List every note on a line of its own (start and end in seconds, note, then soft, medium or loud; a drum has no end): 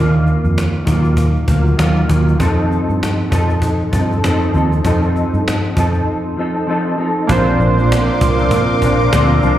0.00 0.34 D#2 medium
0.00 0.85 D#3 medium
0.00 0.86 A#3 medium
0.00 0.88 F4 medium
0.27 cajon slap soft
0.44 0.69 F2 medium
0.44 cajon slap soft
0.58 cajon slap medium
0.85 1.36 D#2 loud
0.85 1.53 D#3 medium
0.85 1.47 F#3 medium
0.85 1.48 A#3 medium
0.85 1.49 F4 medium
0.85 cajon bass medium
1.04 cajon slap soft
1.17 cajon bass medium
1.36 cajon slap soft
1.48 1.72 D2 medium
1.48 1.77 F#3 medium
1.48 1.78 A#3 medium
1.48 1.79 F4 medium
1.48 cajon bass medium
1.67 cajon slap soft
1.77 2.03 D#2 medium
1.77 2.06 D#3 medium
1.77 2.08 F#3 medium
1.77 2.09 A#3 medium
1.77 2.10 F4 medium
1.77 cajon slap loud
1.96 cajon slap soft
2.08 2.34 D#2 medium
2.08 2.39 D#3 medium
2.08 2.39 F#3 medium
2.08 2.40 A#3 medium
2.08 2.40 F4 medium
2.08 cajon bass medium
2.08 cajon slap soft
2.28 cajon slap soft
2.39 2.79 F2 medium
2.39 3.30 F3 medium
2.39 3.31 C4 medium
2.39 3.31 D#4 medium
2.39 3.32 A4 medium
2.39 cajon bass loud
2.72 cajon slap soft
2.89 3.13 G2 medium
2.89 cajon slap soft
3.03 cajon slap medium
3.30 3.81 F2 loud
3.30 3.91 F3 medium
3.30 3.92 C4 soft
3.30 3.93 D#4 medium
3.30 3.93 A4 medium
3.30 cajon bass medium
3.49 cajon slap soft
3.62 cajon bass medium
3.81 cajon slap soft
3.91 4.17 G2 medium
3.91 4.22 F3 medium
3.91 4.23 C4 medium
3.91 4.24 D#4 medium
3.91 4.24 A4 medium
3.91 cajon bass medium
4.12 cajon slap soft
4.23 4.48 F2 medium
4.23 4.52 F3 medium
4.23 4.54 C4 medium
4.23 4.55 D#4 medium
4.23 4.55 A4 medium
4.23 cajon slap loud
4.41 cajon slap soft
4.53 4.79 D#2 medium
4.53 4.83 F3 soft
4.53 4.84 C4 medium
4.53 cajon slap soft
4.56 4.85 D#4 medium
4.56 4.85 A4 medium
4.56 cajon slap soft
4.72 cajon slap soft
4.84 5.24 F2 medium
4.84 5.75 F3 medium
4.84 5.77 C4 medium
4.84 5.77 D#4 medium
4.84 5.77 A4 medium
4.84 cajon bass medium
5.03 cajon slap soft
5.16 cajon slap soft
5.34 5.58 G2 medium
5.34 cajon slap soft
5.48 cajon slap loud
5.63 cajon slap soft
5.76 6.01 F2 loud
5.76 6.37 F3 medium
5.76 6.38 C4 medium
5.76 6.38 D#4 medium
5.76 6.39 A4 medium
5.76 cajon bass medium
5.94 cajon slap soft
6.37 6.66 F3 medium
6.37 6.67 C4 soft
6.37 6.68 D#4 medium
6.37 6.69 A4 medium
6.67 6.97 F3 medium
6.67 6.98 C4 medium
6.67 6.99 D#4 medium
6.67 7.00 A4 medium
6.98 7.28 F3 soft
6.98 7.29 C4 medium
6.98 7.30 D#4 medium
6.98 7.30 A4 medium
7.27 7.54 A#1 medium
7.27 7.78 A#2 medium
7.27 7.78 F3 medium
7.27 9.59 A#3 medium
7.27 7.78 C4 medium
7.27 9.59 D4 medium
7.27 7.76 D4 medium
7.27 9.59 F4 medium
7.27 9.59 A#4 medium
7.27 9.59 F5 medium
7.27 9.59 C6 medium
7.27 9.59 D6 medium
7.27 cajon bass loud
7.32 9.59 C5 medium
7.59 8.09 A#1 loud
7.59 cajon slap soft
7.77 8.41 F3 soft
7.77 8.39 C4 soft
7.77 8.37 D4 medium
7.77 cajon slap soft
7.92 cajon slap loud
8.21 8.53 C2 medium
8.21 cajon bass loud
8.38 8.81 F3 soft
8.38 8.82 C4 medium
8.38 8.81 D4 medium
8.38 cajon slap soft
8.51 8.84 A#2 loud
8.51 cajon bass medium
8.69 cajon slap soft
8.81 9.07 A#1 medium
8.81 9.10 A#2 medium
8.81 9.11 F3 medium
8.81 9.13 C4 medium
8.81 9.14 D4 medium
8.81 cajon bass medium
9.00 cajon slap soft
9.11 9.37 D2 medium
9.11 9.41 A#2 medium
9.11 9.42 F3 medium
9.11 9.43 C4 medium
9.11 9.44 D4 medium
9.11 cajon slap loud
9.29 cajon slap soft
9.42 9.59 C2 medium
9.42 9.59 A#2 medium
9.42 9.59 F3 medium
9.42 9.59 C4 medium
9.42 cajon slap soft
9.45 9.59 D4 medium
9.45 cajon slap soft